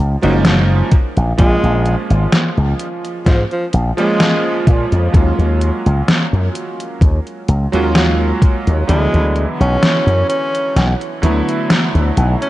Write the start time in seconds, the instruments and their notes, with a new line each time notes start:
Already playing: electric grand piano F3 G#3 A#3 C#4 D#4
0.00 slap bass C#2
0.23 slap bass F#1, electric grand piano F3 G#3 A#3 C#4 D#4, tenor saxophone F#3, closed hi-hat
0.45 tenor saxophone F#3, snare, closed hi-hat
0.92 kick, closed hi-hat
1.17 slap bass A#1, closed hi-hat
1.38 slap bass A#1, electric grand piano F3 G#3 A#3 C#4 F4, tenor saxophone G#3, kick, closed hi-hat
1.63 slap bass A#1, closed hi-hat
1.86 closed hi-hat
2.10 slap bass G#1, closed hi-hat
2.32 snare, closed hi-hat
2.57 slap bass C#2, closed hi-hat
2.79 closed hi-hat
3.05 closed hi-hat
3.26 slap bass G#2, tenor saxophone F3, kick, snare, closed hi-hat
3.51 tenor saxophone F3, closed hi-hat
3.73 slap bass A#1, closed hi-hat
3.97 electric grand piano F3 G#3 A#3 C#4 F4, tenor saxophone G#3, closed hi-hat
4.20 snare, closed hi-hat
4.67 slap bass A#2, kick, closed hi-hat
4.92 slap bass F2, closed hi-hat
5.12 slap bass D#2, electric grand piano F#3 G#3 A#3 C#4 F4, kick, closed hi-hat
5.39 slap bass D#2, closed hi-hat
5.61 closed hi-hat
5.86 slap bass C#2, closed hi-hat
6.08 snare, closed hi-hat
6.33 slap bass F#2, closed hi-hat
6.55 closed hi-hat
6.80 closed hi-hat
7.01 slap bass D#2, kick, closed hi-hat
7.27 closed hi-hat
7.48 slap bass C#2, closed hi-hat
7.72 slap bass D#2, electric grand piano F#3 G#3 A#3 C#4 F4, tenor saxophone F#3, closed hi-hat
7.95 tenor saxophone F#3, snare, closed hi-hat
8.42 kick, closed hi-hat
8.67 slap bass D#2, closed hi-hat
8.87 slap bass D2, electric grand piano D3 E3 F#3 B3 E4, tenor saxophone G#3, closed hi-hat
9.14 slap bass D2, closed hi-hat
9.36 closed hi-hat
9.60 slap bass B1, tenor saxophone C#4, closed hi-hat
9.83 snare, closed hi-hat
10.07 slap bass F#2, closed hi-hat
10.29 tenor saxophone C#4, closed hi-hat
10.55 closed hi-hat
10.76 slap bass B1, snare, closed hi-hat
11.01 closed hi-hat
11.22 slap bass D2, electric grand piano D3 F#3 A3 B3 E4, closed hi-hat
11.49 closed hi-hat
11.70 snare, closed hi-hat
11.95 slap bass D2, closed hi-hat
12.17 slap bass B1, closed hi-hat
12.42 tenor saxophone C#4, closed hi-hat